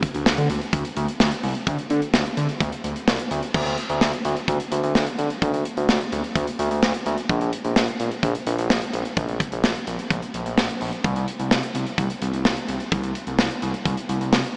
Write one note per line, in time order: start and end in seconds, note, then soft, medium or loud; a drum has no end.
0.03 kick medium
0.03 closed hi-hat medium
0.14 0.25 D2 loud
0.14 closed hi-hat medium
0.26 0.36 D2 loud
0.26 snare loud
0.38 0.48 D3 loud
0.38 closed hi-hat medium
0.50 0.60 D2 loud
0.50 closed hi-hat medium
0.61 closed hi-hat soft
0.73 0.83 D2 loud
0.73 kick loud
0.73 closed hi-hat medium
0.85 closed hi-hat medium
0.97 1.07 D2 loud
0.97 closed hi-hat medium
1.08 closed hi-hat medium
1.20 1.30 D2 loud
1.20 snare loud
1.32 closed hi-hat medium
1.43 1.54 C2 loud
1.43 open hi-hat medium
1.55 closed hi-hat medium
1.67 1.77 D2 loud
1.67 kick loud
1.67 closed hi-hat medium
1.78 closed hi-hat medium
1.90 2.00 D3 loud
1.90 closed hi-hat medium
2.02 closed hi-hat medium
2.14 2.24 D2 loud
2.14 snare loud
2.26 closed hi-hat medium
2.37 2.47 D3 medium
2.37 closed hi-hat medium
2.49 closed hi-hat soft
2.60 2.71 D2 loud
2.60 kick medium
2.60 closed hi-hat medium
2.72 closed hi-hat medium
2.84 2.94 D2 medium
2.84 closed hi-hat medium
2.96 closed hi-hat medium
3.07 3.18 C2 medium
3.07 snare loud
3.19 closed hi-hat medium
3.31 3.41 D2 medium
3.31 closed hi-hat medium
3.43 closed hi-hat medium
3.54 3.65 D2 loud
3.54 kick loud
3.54 crash medium
3.66 3.76 D2 medium
3.66 closed hi-hat medium
3.78 closed hi-hat medium
3.90 4.00 D2 loud
3.90 closed hi-hat medium
4.01 4.11 D2 loud
4.01 snare loud
4.13 closed hi-hat medium
4.25 4.35 D2 loud
4.25 closed hi-hat medium
4.36 closed hi-hat soft
4.48 4.58 D2 loud
4.48 kick medium
4.48 closed hi-hat medium
4.60 closed hi-hat medium
4.72 4.82 D2 loud
4.72 closed hi-hat medium
4.83 4.93 D2 loud
4.83 closed hi-hat medium
4.95 5.05 D2 loud
4.95 snare loud
5.07 closed hi-hat medium
5.18 5.29 D2 loud
5.18 closed hi-hat medium
5.30 closed hi-hat medium
5.42 5.52 D2 loud
5.42 kick loud
5.42 closed hi-hat medium
5.54 5.64 D2 medium
5.54 closed hi-hat medium
5.65 closed hi-hat medium
5.77 5.87 D2 medium
5.77 closed hi-hat medium
5.89 5.99 D2 loud
5.89 snare loud
6.01 closed hi-hat medium
6.12 6.22 D2 loud
6.12 closed hi-hat medium
6.24 closed hi-hat soft
6.36 6.46 D2 loud
6.36 kick medium
6.36 closed hi-hat medium
6.47 closed hi-hat medium
6.59 6.69 D2 loud
6.59 closed hi-hat medium
6.71 6.81 D2 medium
6.71 closed hi-hat medium
6.82 6.93 D2 loud
6.82 snare loud
6.94 closed hi-hat medium
7.06 7.16 D2 medium
7.06 closed hi-hat medium
7.18 closed hi-hat medium
7.29 7.40 A#1 loud
7.29 kick loud
7.29 closed hi-hat medium
7.41 7.51 A#1 loud
7.41 closed hi-hat medium
7.53 closed hi-hat medium
7.65 7.75 A#1 loud
7.65 closed hi-hat medium
7.76 7.87 A#1 loud
7.76 snare loud
7.88 closed hi-hat medium
8.00 8.10 A#1 medium
8.00 closed hi-hat medium
8.11 closed hi-hat soft
8.23 8.33 A#1 loud
8.23 kick medium
8.23 closed hi-hat medium
8.35 closed hi-hat medium
8.47 8.57 A#1 loud
8.47 closed hi-hat medium
8.58 8.68 A#1 loud
8.58 closed hi-hat medium
8.70 8.80 A#1 loud
8.70 snare loud
8.82 closed hi-hat medium
8.93 9.04 A#1 loud
8.93 closed hi-hat medium
9.05 closed hi-hat soft
9.17 9.27 A#1 loud
9.17 kick loud
9.17 closed hi-hat medium
9.29 9.39 A#1 loud
9.29 closed hi-hat soft
9.40 kick medium
9.40 closed hi-hat medium
9.52 9.62 A#1 loud
9.52 closed hi-hat medium
9.64 9.74 A#1 medium
9.64 snare loud
9.76 closed hi-hat medium
9.87 9.97 A#1 medium
9.87 closed hi-hat medium
9.99 closed hi-hat soft
10.10 10.21 A#1 loud
10.10 kick medium
10.10 closed hi-hat medium
10.22 closed hi-hat medium
10.34 10.44 A#1 medium
10.34 closed hi-hat medium
10.46 10.56 A#1 medium
10.46 closed hi-hat medium
10.58 10.68 A#1 loud
10.58 snare loud
10.69 closed hi-hat medium
10.81 10.91 A#1 medium
10.81 open hi-hat medium
10.93 closed hi-hat medium
11.04 11.15 C2 loud
11.04 kick loud
11.04 closed hi-hat medium
11.16 11.26 C2 medium
11.16 closed hi-hat medium
11.28 closed hi-hat medium
11.40 11.50 C2 medium
11.40 closed hi-hat medium
11.51 11.61 C2 loud
11.51 snare loud
11.63 closed hi-hat medium
11.75 11.85 C2 medium
11.75 closed hi-hat medium
11.87 closed hi-hat soft
11.98 12.08 C2 loud
11.98 kick medium
11.98 closed hi-hat medium
12.10 closed hi-hat medium
12.22 12.32 C2 loud
12.22 closed hi-hat medium
12.33 12.43 C2 medium
12.33 closed hi-hat medium
12.45 12.55 C2 loud
12.45 snare loud
12.57 closed hi-hat medium
12.68 12.79 C2 loud
12.68 closed hi-hat medium
12.80 closed hi-hat medium
12.92 13.02 C2 loud
12.92 kick loud
12.92 closed hi-hat medium
13.03 13.14 C2 loud
13.03 closed hi-hat medium
13.15 closed hi-hat medium
13.27 13.37 C2 medium
13.27 closed hi-hat medium
13.39 13.49 C2 loud
13.39 snare loud
13.51 closed hi-hat medium
13.62 13.72 C2 loud
13.62 closed hi-hat medium
13.74 closed hi-hat soft
13.85 13.96 C2 medium
13.85 kick medium
13.85 closed hi-hat medium
13.97 closed hi-hat medium
14.09 14.19 C2 loud
14.09 closed hi-hat medium
14.21 14.31 C2 medium
14.21 closed hi-hat medium
14.33 14.43 C2 loud
14.33 snare loud
14.44 closed hi-hat medium